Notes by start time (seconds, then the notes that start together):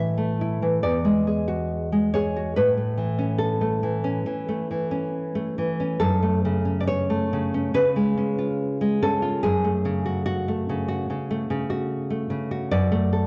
Already playing: A2 E3 E4 E5
0.18 A3
0.41 E4
0.62 E3
0.83 E2 D5
1.05 G#3
1.27 G#4
1.48 F#4
1.92 G#3
2.14 G#4 C#5
2.36 F#4
2.56 A2 B4
2.77 A3
2.98 E3
3.19 C#4
3.38 A4
3.61 A3
3.83 E3
4.04 C#4
4.26 E3
4.49 A3
4.71 E3
4.91 C#4
5.35 A3
5.58 E3
5.80 C#4
6.00 F#2 A4
6.23 A3
6.45 C#3
6.65 C#4
6.80 D5
6.87 C#5
7.10 A3
7.33 C#3
7.54 C#4
7.74 C#3 B4
7.96 G#3
8.17 C#4
8.38 F4
8.81 G#3
9.02 C#4 A4
9.22 F4
9.43 F#2 G#4
9.64 A3
9.85 C#3
10.06 F#4
10.26 F#4
10.48 A3
10.69 C#3
10.88 F#4
11.10 C#3
11.31 A3
11.50 C#3
11.70 F#4
12.10 A3
12.30 C#3
12.51 F#4
12.71 F#2 D5
12.92 A3
13.13 A4